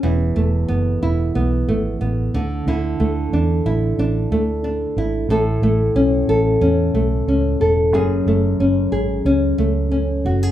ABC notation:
X:1
M:4/4
L:1/16
Q:1/4=91
K:Emix
V:1 name="Nylon-string guitar"
[E,,E]2 A,2 B,2 E2 B,2 A,2 B,2 D,2 | [D,E]2 A,2 D2 E2 D2 A,2 D2 E2 | [A,,A]2 A,2 C2 A2 C2 A,2 C2 A2 | [F,,G]2 A,2 C2 G2 C2 A,2 C2 F G |]
V:2 name="Fingered electric bass" clef=bass
E,,,2 E,,,2 F,,,2 E,,,2 B,,,2 G,,,2 A,,,2 D,,2 | D,,2 D,,2 E,,2 A,,,2 A,,,2 D,,4 G,,,2 | A,,,2 A,,,2 B,,,2 A,,,2 E,,2 B,,,2 C,,2 E,,,2 | F,,,2 F,,,2 F,,,2 G,,,2 C,,2 C,,4 F,,,2 |]